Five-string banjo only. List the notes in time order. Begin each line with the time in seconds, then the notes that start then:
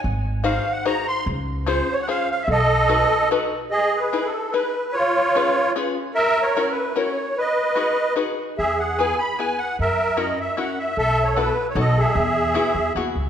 0.44 D#4 F#4 G#4 C5
0.85 D#4 F#4 G#4 C5
1.66 C#4 F4 G#4 C5
2.08 C#4 F4 G#4 C5
2.89 D#4 F#4 A4 B4
3.31 D#4 F#4 A4 B4
4.13 D#4 E4 G#4 B4
4.54 D#4 E4 G#4 B4
5.35 C#4 F4 G#4 B4
5.76 C#4 F4 G#4 B4
6.56 C#4 E4 F#4 A#4
6.96 C#4 E4 F#4 A#4
7.75 D#4 F#4 G#4 B4
8.16 D#4 F#4 G#4 B4
8.99 B3 E4 G#4 B4
9.39 B3 E4 G#4 B4
10.17 C#4 E4 F#4 A#4
10.57 C#4 E4 F#4 A#4
11.36 B3 E4 F#4 A4
11.76 B3 D#4 F#4 A4
12.54 B3 E4 F#4 G#4
12.96 B3 E4 F#4 G#4